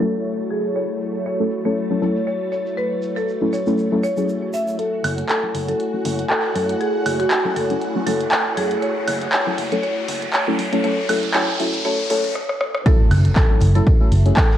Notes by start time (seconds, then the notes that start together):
Already playing: F#3 A3 E4 F#4 C#5 A6, downlifter
0.00 F#3 A3 C#4 E4 A4
0.50 G#4
0.75 C#5, shaker
1.01 shaker
1.14 shaker
1.26 C#5, shaker
1.40 F#3 A3 C#4 E4 A4
1.51 shaker
1.65 F#3 A3 C#4 E4 A4 C#5, shaker
1.76 shaker
1.90 F#3 A3 C#4 E4 A4
2.02 F#3 A3 C#4 E4 A4, shaker
2.16 shaker
2.27 C#5, shaker
2.52 C#5, shaker
2.66 shaker
2.77 B4, shaker
3.02 shaker
3.16 A4, shaker
3.28 shaker
3.41 F#3 A3 C#4 E4 A4
3.53 C#5, shaker
3.67 F#3 A3 C#4 E4 A4, shaker
3.78 shaker
3.92 F#3 A3 C#4 E4 A4
4.03 C#5, shaker
4.17 F#3 A3 C#4 E4 G#4, shaker
4.29 shaker
4.54 E5, shaker
4.67 shaker
4.79 A3 E4 F#4 A4 C#5 F#5 G#5, closed hi-hat, riser
5.04 F#1, open hi-hat, high woodblock
5.18 closed hi-hat
5.29 A4, clap, closed hi-hat
5.43 F#3 A3 C#4 E4 A4
5.55 F#1, open hi-hat
5.68 F#3 A3 C#4 E4 A4, closed hi-hat
5.80 closed hi-hat
5.94 F#3 A3 C#4 E4 A4
6.05 F#1 F#3 A3 C#4 E4 A4, open hi-hat
6.19 closed hi-hat
6.30 A4, clap, closed hi-hat
6.55 F#2 A4, open hi-hat
6.69 closed hi-hat
6.81 G#4, closed hi-hat
7.06 F#1, open hi-hat, high woodblock
7.20 F#4, closed hi-hat
7.31 clap, closed hi-hat
7.45 F#3 A3 C#4 E4 A4
7.56 F#1 A4, open hi-hat
7.70 F#3 A3 C#4 E4 A4, closed hi-hat
7.82 closed hi-hat
7.95 F#3 A3 C#4 E4 A4
8.07 F#1 F#3 A3 C#4 E4 A4, open hi-hat
8.21 closed hi-hat
8.32 clap, closed hi-hat
8.57 F#2 G#4, open hi-hat
8.71 closed hi-hat
8.82 C#5, closed hi-hat
9.08 F#1, open hi-hat, high woodblock
9.21 closed hi-hat
9.32 C#5, clap, closed hi-hat
9.46 F#3 A3 C#4 E4 A4
9.58 F#1, open hi-hat
9.72 F#3 A3 C#4 E4 A4 C#5, closed hi-hat
9.83 C#5, closed hi-hat
10.08 F#1, open hi-hat
10.22 closed hi-hat
10.33 C#5, clap, closed hi-hat
10.47 F#3 A3 C#4 E4 A4
10.59 F#2, open hi-hat
10.73 F#3 A3 C#4 E4 A4 C#5, closed hi-hat
10.84 F#3 A3 C#4 E4 A4 C#5, closed hi-hat
11.09 F#1 F#3 A3 C#4 E4 A4, open hi-hat, high woodblock
11.23 closed hi-hat
11.34 F#3 A3 C#4 E4 A4 C#5, clap, closed hi-hat
11.60 F#1 F#3 A3 C#4 E4 A4, open hi-hat
11.74 closed hi-hat
11.85 F#3 A3 C#4 E4 A4 C#5, closed hi-hat
12.10 F#1 F#3 A3 C#4 E4 A4 C#5, open hi-hat
12.24 closed hi-hat
12.35 cross-stick
12.49 cross-stick
12.61 cross-stick
12.74 cross-stick
12.85 F#3 A3 C#4 E4 F#4 A4 C#5 E5 F#5, kick, closed hi-hat, impact
13.11 F#1, open hi-hat, high woodblock
13.25 closed hi-hat
13.36 A4, kick, snare, clap, closed hi-hat
13.50 F#3 A3 C#4 E4 A4
13.60 F#1, closed hi-hat, open hi-hat
13.75 F#3 A3 C#4 E4 A4, closed hi-hat
13.87 kick, closed hi-hat
14.00 F#3 A3 C#4 E4 A4
14.12 F#1, closed hi-hat, open hi-hat
14.25 F#3 A3 C#4 E4 G#4, closed hi-hat
14.37 A4, kick, snare, clap, closed hi-hat
14.51 snare